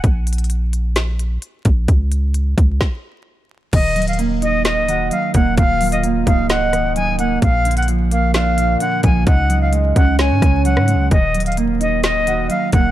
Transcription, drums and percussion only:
0.04 kick loud
0.04 closed hi-hat medium
0.27 closed hi-hat medium
0.33 closed hi-hat medium
0.38 closed hi-hat medium
0.44 closed hi-hat soft
0.50 closed hi-hat medium
0.73 closed hi-hat medium
0.96 snare loud
0.96 closed hi-hat medium
1.19 closed hi-hat medium
1.42 closed hi-hat medium
1.65 kick loud
1.65 closed hi-hat medium
1.88 kick loud
1.88 closed hi-hat medium
2.12 closed hi-hat medium
2.34 closed hi-hat medium
2.58 kick loud
2.58 closed hi-hat medium
2.81 kick loud
2.81 snare medium
3.73 kick loud
3.73 closed hi-hat medium
3.73 crash loud
3.96 closed hi-hat medium
4.02 closed hi-hat medium
4.08 closed hi-hat medium
4.13 closed hi-hat soft
4.19 closed hi-hat medium
4.42 closed hi-hat medium
4.65 snare loud
4.65 closed hi-hat medium
4.88 closed hi-hat medium
5.11 closed hi-hat medium
5.34 kick loud
5.34 closed hi-hat medium
5.57 kick loud
5.57 closed hi-hat medium
5.81 closed hi-hat medium
5.81 open hi-hat medium
5.92 closed hi-hat medium
6.04 closed hi-hat medium
6.27 kick loud
6.27 closed hi-hat medium
6.50 snare loud
6.50 closed hi-hat medium
6.73 cross-stick medium
6.73 closed hi-hat medium
6.96 closed hi-hat medium
7.19 closed hi-hat medium
7.42 kick loud
7.42 closed hi-hat medium
7.65 closed hi-hat medium
7.71 closed hi-hat medium
7.77 closed hi-hat medium
7.83 closed hi-hat soft
7.88 closed hi-hat medium
8.11 closed hi-hat medium
8.34 snare loud
8.34 closed hi-hat medium
8.58 closed hi-hat medium
8.80 closed hi-hat medium
9.03 kick loud
9.03 closed hi-hat medium
9.27 kick loud
9.27 closed hi-hat medium
9.50 closed hi-hat medium
9.73 closed hi-hat medium
9.96 kick loud
9.96 closed hi-hat medium
10.19 snare loud
10.19 closed hi-hat medium
10.42 kick loud
10.42 cross-stick medium
10.42 closed hi-hat medium
10.65 closed hi-hat medium
10.77 cross-stick loud
10.88 closed hi-hat medium
11.11 kick loud
11.11 closed hi-hat medium
11.35 closed hi-hat medium
11.40 closed hi-hat medium
11.46 closed hi-hat medium
11.52 closed hi-hat soft
11.57 closed hi-hat medium
11.81 closed hi-hat medium
12.03 snare loud
12.03 closed hi-hat medium
12.27 closed hi-hat medium
12.50 closed hi-hat medium
12.72 kick loud
12.72 closed hi-hat medium

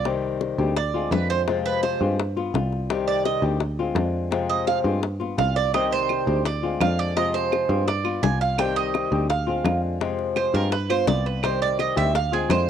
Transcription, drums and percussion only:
0.05 high bongo medium
0.41 high bongo medium
0.76 high bongo medium
1.12 high bongo medium
1.12 low bongo medium
1.48 high bongo medium
1.66 high bongo soft
1.83 high bongo medium
2.20 high bongo medium
2.37 high bongo soft
2.55 high bongo medium
2.55 low bongo medium
2.73 high bongo soft
2.90 high bongo medium
3.25 high bongo medium
3.60 high bongo medium
3.96 high bongo medium
3.96 low bongo medium
4.32 high bongo medium
4.50 high bongo soft
4.68 high bongo medium
5.03 high bongo medium
5.21 high bongo soft
5.39 high bongo medium
5.39 low bongo medium
5.56 high bongo soft
5.74 high bongo medium
5.74 claves medium
6.09 high bongo medium
6.09 claves medium
6.45 high bongo medium
6.81 high bongo medium
6.81 low bongo medium
6.81 claves medium
7.17 high bongo medium
7.35 high bongo soft
7.52 high bongo medium
7.52 claves medium
7.88 high bongo medium
8.05 high bongo soft
8.05 claves medium
8.24 high bongo medium
8.24 low bongo medium
8.41 high bongo soft
8.58 high bongo medium
8.58 claves medium
8.94 high bongo medium
8.94 claves medium
9.30 high bongo medium
9.65 high bongo medium
9.65 low bongo medium
9.65 claves medium
10.01 high bongo medium
10.19 high bongo soft
10.36 high bongo medium
10.36 claves medium
10.72 high bongo medium
10.90 high bongo soft
10.90 claves medium
11.08 high bongo medium
11.08 low bongo medium
11.26 high bongo soft
11.43 high bongo medium
11.43 claves medium
11.79 high bongo medium
11.79 claves medium
12.15 high bongo medium
12.50 high bongo medium
12.50 low bongo medium
12.50 claves medium

